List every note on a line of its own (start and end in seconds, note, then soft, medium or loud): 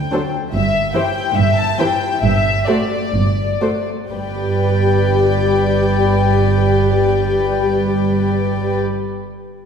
0.00 0.33 G5 soft
0.12 0.20 F#3 soft
0.12 0.20 D4 soft
0.12 0.20 A4 soft
0.12 0.20 C5 soft
0.53 0.86 G1 medium
0.53 0.86 G2 medium
0.53 0.91 E5 medium
0.94 1.02 E3 soft
0.94 1.02 E4 soft
0.94 1.03 G4 soft
0.94 1.03 C5 soft
0.94 1.36 G5 medium
1.36 1.70 G1 medium
1.36 1.70 G2 medium
1.36 1.57 E5 medium
1.57 1.78 A5 medium
1.78 1.87 E3 soft
1.78 1.87 E4 soft
1.78 1.87 G4 soft
1.78 1.86 C5 soft
1.78 2.22 G5 medium
2.22 2.58 G1 medium
2.22 2.58 G2 medium
2.22 2.67 E5 medium
2.67 2.76 A3 soft
2.67 2.76 F#4 soft
2.67 2.75 A4 soft
2.67 2.75 C5 soft
2.67 3.87 D5 soft
3.14 3.51 G1 soft
3.14 3.51 G2 soft
3.61 3.70 A3 soft
3.61 3.69 F#4 soft
3.61 3.70 A4 soft
3.61 3.70 C5 soft
4.11 8.78 G1 soft
4.11 8.78 G2 soft
4.11 8.78 G3 soft
4.11 8.78 G4 soft
4.11 8.78 B4 soft
4.11 8.78 D5 soft
4.11 8.77 G5 soft